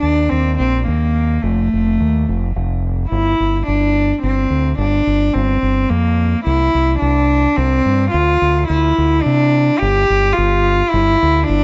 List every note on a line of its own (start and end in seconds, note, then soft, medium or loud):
0.01 0.28 D#2 medium
0.01 0.31 D4 medium
0.29 0.56 D#2 medium
0.29 0.58 C4 medium
0.58 0.84 A#1 medium
0.58 0.85 C4 medium
0.86 1.37 D#2 medium
0.86 1.44 A#3 medium
1.42 1.68 F1 medium
1.42 2.55 A3 medium
1.74 1.97 F1 medium
2.01 2.25 D#2 medium
2.29 2.53 F1 medium
2.56 3.05 F1 medium
3.09 3.33 G1 medium
3.09 3.62 E4 medium
3.40 3.62 G1 medium
3.67 4.11 G1 medium
3.67 4.19 D4 medium
4.22 4.45 G1 medium
4.22 4.75 C4 medium
4.50 4.72 D2 medium
4.78 5.00 G1 medium
4.78 5.35 D4 medium
5.07 5.29 G1 medium
5.33 5.57 G1 medium
5.33 5.91 C4 medium
5.63 5.84 G1 medium
5.89 6.34 F2 medium
5.89 6.45 A#3 medium
6.45 6.68 C2 medium
6.45 6.98 E4 medium
6.75 6.96 C2 medium
6.99 7.46 C2 medium
6.99 7.58 D4 medium
7.57 7.80 C2 medium
7.57 8.11 C4 medium
7.86 8.08 G2 medium
8.11 8.36 D2 medium
8.11 8.65 F4 medium
8.42 8.64 D2 medium
8.68 8.92 D2 medium
8.68 9.23 E4 medium
8.98 9.20 D2 medium
9.22 9.80 D4 medium
9.26 9.69 C3 medium
9.78 10.04 G1 medium
9.78 10.34 G4 loud
10.10 10.32 G1 medium
10.33 10.91 F4 medium
10.38 10.81 G1 medium
10.89 11.45 E4 medium
10.94 11.15 G1 medium
11.23 11.44 D2 medium
11.44 11.64 D4 loud
11.49 11.64 G1 loud